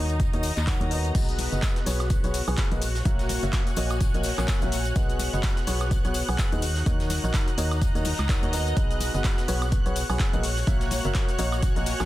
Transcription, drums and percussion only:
0.10 closed hi-hat, tambourine
0.20 kick, closed hi-hat, tambourine
0.33 closed hi-hat, tambourine
0.43 open hi-hat, tambourine
0.57 clap, closed hi-hat, tambourine
0.67 kick, clap, closed hi-hat, tambourine
0.80 closed hi-hat, tambourine, high conga
0.91 open hi-hat, tambourine
1.05 closed hi-hat, tambourine
1.15 kick, closed hi-hat, crash, tambourine, shaker
1.29 closed hi-hat, tambourine, shaker
1.38 snare, closed hi-hat, open hi-hat, tambourine, high conga, shaker
1.52 closed hi-hat, tambourine, shaker
1.62 kick, snare, clap, closed hi-hat, tambourine, shaker
1.76 snare, closed hi-hat, tambourine, shaker
1.86 open hi-hat, tambourine, shaker
2.00 snare, closed hi-hat, tambourine, high woodblock, shaker
2.10 kick, closed hi-hat, tambourine, shaker
2.24 closed hi-hat, tambourine, shaker
2.34 closed hi-hat, open hi-hat, tambourine, shaker
2.48 tambourine, high woodblock, shaker
2.57 kick, snare, clap, closed hi-hat, tambourine, shaker
2.71 closed hi-hat, tambourine, high conga
2.82 closed hi-hat, open hi-hat, tambourine, shaker
2.95 snare, tambourine, shaker
3.05 kick, closed hi-hat, tambourine, shaker
3.19 snare, closed hi-hat, tambourine, shaker
3.29 snare, closed hi-hat, open hi-hat, tambourine, high conga, shaker
3.43 closed hi-hat, tambourine, shaker
3.53 kick, snare, clap, closed hi-hat, tambourine, shaker
3.67 closed hi-hat, tambourine, shaker
3.76 closed hi-hat, open hi-hat, tambourine, shaker
3.90 snare, closed hi-hat, tambourine, high woodblock, shaker
4.00 kick, closed hi-hat, tambourine, shaker
4.14 closed hi-hat, tambourine, shaker
4.23 snare, closed hi-hat, open hi-hat, tambourine, shaker
4.38 clap, closed hi-hat, tambourine, high woodblock, shaker
4.48 kick, snare, clap, closed hi-hat, tambourine, shaker
4.62 closed hi-hat, tambourine, high conga, shaker
4.72 snare, closed hi-hat, open hi-hat, tambourine, shaker
4.85 closed hi-hat, tambourine, shaker
4.96 kick, closed hi-hat, tambourine, shaker
5.09 closed hi-hat, tambourine, shaker
5.19 snare, closed hi-hat, open hi-hat, tambourine, high conga, shaker
5.33 closed hi-hat, tambourine, shaker
5.43 kick, snare, clap, closed hi-hat, tambourine, shaker
5.57 snare, closed hi-hat, tambourine, shaker
5.67 open hi-hat, tambourine, shaker
5.80 snare, closed hi-hat, tambourine, high woodblock, shaker
5.91 kick, closed hi-hat, tambourine, shaker
6.04 closed hi-hat, tambourine, shaker
6.14 closed hi-hat, open hi-hat, tambourine, shaker
6.28 tambourine, high woodblock, shaker
6.38 kick, snare, clap, closed hi-hat, tambourine, shaker
6.52 closed hi-hat, tambourine, high conga
6.62 closed hi-hat, open hi-hat, tambourine, shaker
6.75 snare, tambourine, shaker
6.86 kick, closed hi-hat, tambourine, shaker
7.00 snare, closed hi-hat, tambourine, shaker
7.10 snare, closed hi-hat, open hi-hat, tambourine, high conga, shaker
7.24 closed hi-hat, tambourine, shaker
7.34 kick, snare, clap, closed hi-hat, tambourine, shaker
7.48 closed hi-hat, tambourine, shaker
7.58 closed hi-hat, open hi-hat, tambourine, shaker
7.71 snare, closed hi-hat, tambourine, high woodblock, shaker
7.81 kick, closed hi-hat, tambourine, shaker
7.95 closed hi-hat, tambourine, shaker
8.05 snare, closed hi-hat, open hi-hat, tambourine, high conga, shaker
8.19 clap, closed hi-hat, tambourine, high woodblock, shaker
8.29 kick, snare, clap, closed hi-hat, tambourine, shaker
8.42 closed hi-hat, tambourine, high conga, shaker
8.53 snare, closed hi-hat, open hi-hat, tambourine, shaker
8.67 closed hi-hat, tambourine, shaker
8.77 kick, closed hi-hat, tambourine, shaker
8.91 closed hi-hat, tambourine, shaker
9.00 snare, closed hi-hat, open hi-hat, tambourine, high conga, shaker
9.14 closed hi-hat, tambourine, shaker
9.24 kick, snare, clap, closed hi-hat, tambourine, shaker
9.38 snare, closed hi-hat, tambourine, shaker
9.48 open hi-hat, tambourine, shaker
9.62 snare, closed hi-hat, tambourine, high woodblock, shaker
9.72 kick, closed hi-hat, tambourine, shaker
9.86 closed hi-hat, tambourine, shaker
9.96 closed hi-hat, open hi-hat, tambourine, shaker
10.09 tambourine, high woodblock, shaker
10.19 kick, snare, clap, closed hi-hat, tambourine, shaker
10.33 closed hi-hat, tambourine, high conga
10.43 closed hi-hat, open hi-hat, tambourine, shaker
10.57 snare, tambourine, shaker
10.67 kick, closed hi-hat, tambourine, shaker
10.81 snare, closed hi-hat, tambourine, shaker
10.91 snare, closed hi-hat, open hi-hat, tambourine, high conga, shaker
11.04 closed hi-hat, tambourine, shaker
11.15 kick, snare, clap, closed hi-hat, tambourine, shaker
11.28 closed hi-hat, tambourine, shaker
11.39 closed hi-hat, open hi-hat, tambourine, shaker
11.52 snare, closed hi-hat, tambourine, high woodblock, shaker
11.62 kick, closed hi-hat, tambourine, shaker
11.76 closed hi-hat, tambourine, shaker
11.86 snare, closed hi-hat, open hi-hat, tambourine, shaker
12.00 clap, closed hi-hat, tambourine, high woodblock, shaker

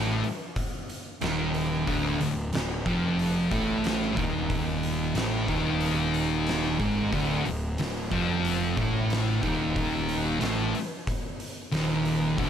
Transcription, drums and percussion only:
0.24 open hi-hat
0.56 kick, open hi-hat
0.90 open hi-hat
1.21 snare, open hi-hat
1.54 open hi-hat
1.87 kick, open hi-hat
2.21 open hi-hat
2.53 snare, open hi-hat
2.86 kick, open hi-hat
3.19 open hi-hat
3.51 kick, open hi-hat
3.84 snare, open hi-hat
4.17 kick, open hi-hat
4.50 kick, open hi-hat
4.83 open hi-hat
5.15 snare, open hi-hat
5.48 kick, open hi-hat
5.81 open hi-hat
6.14 open hi-hat
6.47 snare, open hi-hat
6.80 kick, open hi-hat
7.13 kick, open hi-hat
7.45 open hi-hat
7.78 snare, open hi-hat
8.12 kick, open hi-hat
8.45 open hi-hat
8.77 kick, open hi-hat
9.10 snare, open hi-hat
9.43 kick, open hi-hat
9.76 kick, open hi-hat
10.09 open hi-hat
10.41 snare, open hi-hat
10.75 open hi-hat
11.07 kick, open hi-hat
11.40 open hi-hat
11.72 snare, open hi-hat
12.05 open hi-hat
12.38 kick, open hi-hat

